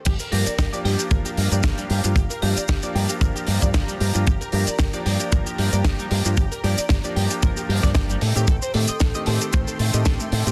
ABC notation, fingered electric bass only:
X:1
M:4/4
L:1/16
Q:"Swing 16ths" 1/4=114
K:Gm
V:1 name="Fingered electric bass" clef=bass
G,,, z G,, z G,,, z G,, z G,,, z G,, G,, G,,, z G,, G,, | G,,, z G,, z G,,, z G,, z G,,, z G,, G,, G,,, z G,, G,, | G,,, z G,, z G,,, z G,, z G,,, z G,, G,, G,,, z G,, G,, | G,,, z G,, z G,,, z G,, z G,,, z G,, G,, G,,, z A,, A,, |
A,,, z A,, z A,,, z A,, z A,,, z A,, A,, A,,, z A,, A,, |]